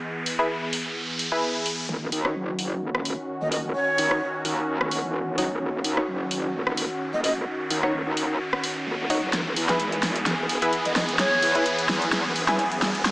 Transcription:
Already playing: E3 B3 G#4, riser
0.26 open hi-hat
0.39 E4 G#4 B4
0.73 open hi-hat
1.19 open hi-hat
1.32 E4 G#4 B4
1.66 open hi-hat
1.89 D#1 D#3 C#4 F#4, riser
2.12 D#2, open hi-hat
2.25 D#4 F#4 C#5, cross-stick
2.35 F#1
2.59 open hi-hat
2.82 D#1
2.95 cross-stick
3.05 open hi-hat
3.41 D#1 D#5
3.52 D#5, open hi-hat
3.64 D#1
3.75 C#5
3.98 D#2, open hi-hat
4.11 D#4 F#4 C#5, cross-stick
4.45 D#2, open hi-hat
4.81 D#1, cross-stick
4.91 open hi-hat
5.04 E1
5.38 F#1 D#4 F#4 C#5, open hi-hat
5.51 D#1
5.61 D#1
5.84 D#2, open hi-hat
5.97 D#4 F#4 C#5, cross-stick
6.08 F#1
6.31 open hi-hat
6.54 D#1
6.67 cross-stick
6.77 open hi-hat
7.13 D#1 D#5
7.24 D#5, open hi-hat
7.36 D#1
7.70 D#2, open hi-hat
7.83 D#4 F#4 C#5, cross-stick
7.94 D#1
8.06 D#2
8.17 open hi-hat
8.53 cross-stick
8.64 open hi-hat
8.87 D#1
9.10 D#4 F#4 C#5, open hi-hat
9.23 F#1
9.33 E1 E3 B3 G#4, snare, closed hi-hat
9.56 E2, open hi-hat
9.69 E4 G#4 B4, snare, closed hi-hat
9.80 G#1, closed hi-hat
9.92 closed hi-hat
10.03 snare, open hi-hat
10.16 closed hi-hat
10.26 E1, snare, closed hi-hat
10.49 open hi-hat
10.62 E4 G#4 B4, closed hi-hat
10.73 closed hi-hat
10.85 E1 D#5, closed hi-hat
10.96 D#5, snare, open hi-hat
11.09 E1, closed hi-hat
11.19 C#5, snare, closed hi-hat
11.42 E2, open hi-hat
11.55 E4 G#4 B4, closed hi-hat
11.66 closed hi-hat
11.79 closed hi-hat
11.89 E2, snare, open hi-hat
12.02 closed hi-hat
12.12 snare, closed hi-hat
12.25 E1
12.36 open hi-hat
12.48 F#1 E4 G#4 B4, snare, closed hi-hat
12.59 closed hi-hat
12.72 closed hi-hat
12.82 G#1, snare, open hi-hat
12.95 E1, closed hi-hat
13.05 E1, snare, closed hi-hat

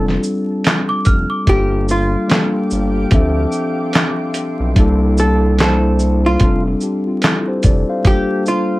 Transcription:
Already playing: F1 G3 C4 D4 F4 A4
0.08 snare
0.23 shaker
0.64 snare, clap, closed hi-hat
0.89 D6
1.05 F1 F6, kick, closed hi-hat, shaker
1.30 D6
1.46 G1 G3 A#3 D4 G4 F5 G5 D6, kick, closed hi-hat
1.50 F4 A4
1.89 F4, shaker
2.28 G3 A#3 D4, snare, closed hi-hat
2.32 F4 A4, clap
2.70 G1, shaker
3.11 D2 E3 C4 D4 F4 E5 C6, kick, closed hi-hat
3.15 F3 A4 E5
3.52 shaker
3.93 snare, clap, closed hi-hat
4.34 closed hi-hat, shaker
4.60 B1
4.75 C2 G3 A#3 D4 E4, kick, closed hi-hat
4.80 A4
5.18 A4, shaker
5.57 G3 A#3 D4, snare, closed hi-hat
5.61 E4 A4 C5, clap
5.99 shaker
6.26 F4
6.39 F1 G3 C4 D4, kick, closed hi-hat
6.43 F4 A4
6.81 D4 G4, shaker
7.07 C4 F4
7.22 E4 A4, snare, clap, closed hi-hat
7.48 G4 C5
7.63 F1 A4 D5, kick, closed hi-hat, shaker
7.89 C5 F5
8.04 G3 A3 D4 G4, kick, closed hi-hat
8.08 A#3 F4 A4
8.46 F4, shaker

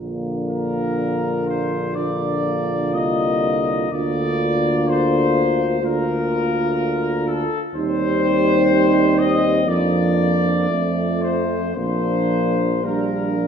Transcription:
Already playing: A#3 F4
0.00 A#1 D3
0.49 A#4
1.47 C5
1.95 D3 A#3 F4 D5
2.93 C2 D#5
3.92 D2 D3 A#3 F4 D5
4.88 C5
5.82 D3 A#3 F4 A#4
7.28 A4
7.74 D#2 G3 C4 D#4 C5
9.18 D#5
9.67 F2 F3 A#3 D4 D5
10.69 F2 F3 A3 C4
11.21 C5
11.75 A#1 F3 A#3 D4 C5
12.83 G3 A#3 D4 A#4
13.38 F3

